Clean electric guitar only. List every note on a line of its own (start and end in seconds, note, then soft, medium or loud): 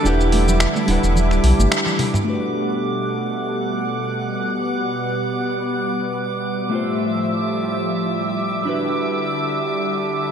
0.03 0.84 G3 medium
0.03 0.85 D4 medium
0.03 0.85 E4 medium
0.07 0.87 B4 medium
0.07 0.86 F#5 medium
0.86 2.23 G3 medium
0.86 2.24 D4 medium
0.86 2.24 E4 medium
0.90 2.26 B4 medium
0.90 2.25 F#5 medium
2.24 6.67 A3 medium
2.24 6.68 D4 medium
2.24 6.68 F#4 medium
2.24 6.69 G4 medium
2.30 6.70 B4 medium
6.69 8.62 A3 medium
6.69 6.75 E4 medium
6.69 8.63 F4 medium
6.74 8.64 G4 medium
6.74 8.65 C5 medium
8.63 8.68 G3 medium
8.63 10.32 D4 medium
8.63 10.32 E4 medium
8.68 10.32 F#4 medium
8.68 10.32 B4 medium